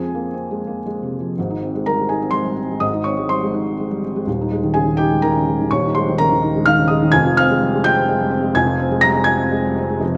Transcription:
felt piano
Already playing: F2 G#4 G#5
0.00 C4
0.15 A#3
0.34 C4
0.51 G#3
0.67 A#3
0.86 G#3
1.03 C3
1.20 F3
1.38 G#1 G#2
1.50 D#4
1.62 C4
1.75 G#3
1.86 G3 A#4 A#5
1.98 G#3
2.09 D#4 G#4 G#5
2.22 C4
2.31 G#3 C5 C6
2.45 G3
2.57 C4
2.71 G#3
2.80 G#1 G#2 D#5 D#6
2.93 D#4
3.04 C4 C#5 C#6
3.17 G#3
3.29 G3 C5 C6
3.43 G#3
3.54 D#4
3.67 C4
3.80 G#3
3.91 G3
4.04 C4
4.16 G#3
4.27 D#1 D#2
4.41 D#4
4.52 G#3
4.64 D#3
4.74 C#3 G#4 G#5
4.86 D#3
4.97 D#4 G4 G5
5.11 G#3
5.22 D#3 A#4 A#5
5.36 C#3
5.48 G#3
5.61 D#3
5.71 D#1 D#2 C#5 C#6
5.86 D#4
5.95 G#3 C5 C6
6.08 D#3
6.18 C#3 A#4 A#5
6.32 D#3
6.42 D#4
6.56 G#3
6.66 D#3 F5 F6
6.78 C#3
6.88 G#3 D#5 D#6
7.03 D#3
7.12 F1 F2 G#5 G#6
7.26 F4
7.37 C4 F5 F6
7.50 G#3
7.62 G3
7.74 G#3
7.84 F4 G5 G6
7.96 C4
8.09 G#3
8.21 G3
8.31 C4
8.43 G#3
8.55 F1 F2 G#5 G#6
8.66 F4
8.80 C4
8.91 G#3
9.01 G3 A#5 A#6
9.15 G#3
9.24 F4 G#5 G#6
9.38 C4
9.52 G#3
9.66 G3
9.78 C4
9.89 G#3
10.00 F1 F2

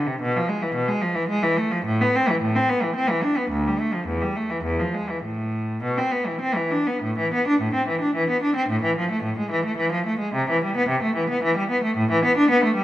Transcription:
cello
0.07 C3
0.21 B2
0.36 F3
0.48 G#3
0.62 E3
0.75 B2
0.88 G#3
1.02 F3
1.15 E3
1.28 G#3
1.43 E3
1.57 A3
1.71 F3
1.85 A2
2.01 B3
2.15 C4
2.29 E3
2.42 A2
2.56 C4
2.69 B3
2.83 E3
2.96 C4
3.10 E3
3.23 D4
3.37 B3
3.51 D2
3.68 G3
3.80 A3
3.93 F3
4.07 E2
4.22 G3
4.36 A3
4.50 E3
4.64 E2
4.80 F3
4.94 G#3
5.10 E3
5.24 A2
5.83 B2
5.98 C4
6.12 B3
6.27 E3
6.41 C4
6.56 E3
6.71 D4
6.87 B3
7.03 A2
7.19 E3
7.34 B3
7.48 D4
7.61 A2
7.74 C4
7.88 E3
8.01 D4
8.16 E3
8.30 B3
8.43 D4
8.56 C4
8.69 A2
8.83 E3
8.98 F3
9.11 A3
9.23 A2
9.38 G#3
9.51 E3
9.65 A3
9.77 E3
9.92 F3
10.06 A3
10.19 G#3
10.34 C3
10.50 E3
10.64 G3
10.77 B3
10.89 C3
11.03 A3
11.16 E3
11.30 B3
11.44 E3
11.57 G3
11.71 B3
11.84 A3
11.97 A2
12.11 E3
12.25 B3
12.37 D4
12.50 B3
12.64 A3
12.76 G3

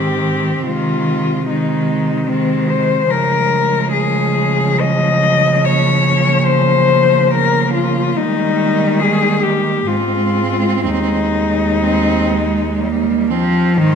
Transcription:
cello
Already playing: G#2 D#3 C4 G4
0.65 C3 D#3 G#3 F4
1.47 D#3 G#3 D#4
2.27 D#3 G#3 C4
2.69 C5
3.08 C#3 F3 G#3 A#4
3.92 G#4
4.80 D#5
5.65 A#3 C#5
6.45 C5
7.31 A#4
7.74 F4
8.16 D#3 G3 D#4
9.00 G#4
9.43 G4
9.87 G#2 G#3 C4 F4
10.84 D#2 D#4
11.83 C4
12.31 G#3
12.81 G3 A#3
13.30 F3 C4
13.77 G#2 D#3 D#4 C5

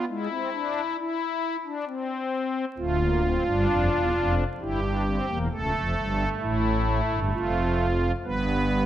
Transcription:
pipe organ
0.08 G#3 E4
0.30 C4
0.53 D4
0.98 E4
1.65 D4
1.86 C4
2.77 D1 D2 A3 F4
3.00 A#3
3.24 C4
3.46 G1 G2 D4
3.68 F1 F2
3.91 E1 E2
4.15 F1 F2
4.60 G1 G2 E4 G4
4.82 D4
5.06 C4
5.28 E1 E2 A#3
5.51 C#1 C#2 A3 A4
5.74 F1 F2
5.97 G1 G2
6.41 A1 A2 E4
7.11 G1 G2
7.33 F1 F2 F4
8.23 G1 G2 B3 B4

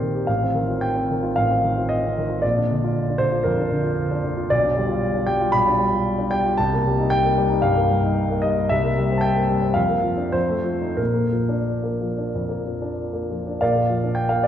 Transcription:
grand piano
Already playing: A#1 D#3 C4 G4 A#4 C5 D5
0.02 D#3
0.15 G4
0.27 A1 F5
0.43 C4
0.55 D#3
0.68 F4
0.81 G5
0.96 C4
1.11 D#3
1.23 F4
1.36 A1 F5
1.51 C4
1.64 D#3
1.77 F4
1.89 D#5
2.03 C4
2.18 D#3
2.30 F4
2.42 A#1 D5
2.57 D4
2.71 D3
2.84 F4
3.08 D4
3.18 D3 C5
3.32 F4
3.44 F2 A#4
3.58 D4
3.72 D3
3.84 F4
4.11 D4
4.24 D3
4.37 F4
4.50 B1 D5
4.64 D4
4.77 G3
4.89 F4
5.15 D4
5.27 G3 G5
5.41 F4
5.52 B1 B5
5.68 D4
5.79 G3
5.93 F4
6.18 D4
6.31 G3 G5
6.46 F4
6.58 C2 A5
6.73 A#3
6.87 G3
6.99 D#4
7.10 G5
7.24 A#3
7.38 G3
7.50 D#4
7.62 G2 F5
7.76 A#3
7.90 G3
8.04 D#4
8.30 A#3
8.42 G3 D#5
8.57 D#4
8.69 C2 E5
8.84 A#3
8.98 G3
9.11 C4
9.18 G5 A5
9.36 A#3
9.50 G3
9.62 C4
9.74 F2 F5
9.89 A#3
10.03 F3
10.17 D4
10.32 F2 C5
10.49 A3
10.64 F3
10.81 D#4
10.97 A#1 A#4
11.14 A#3
11.32 F3
11.49 D4
11.83 A#3
12.02 F3
12.18 D4
12.35 F2
12.49 A#3
12.66 F3
12.82 D4
13.13 A#3
13.31 F3
13.47 D4
13.61 A#1 A#4 D5 F5
13.76 A#3
13.90 F3
14.04 D4
14.15 G5
14.29 A#3 F5
14.44 D5

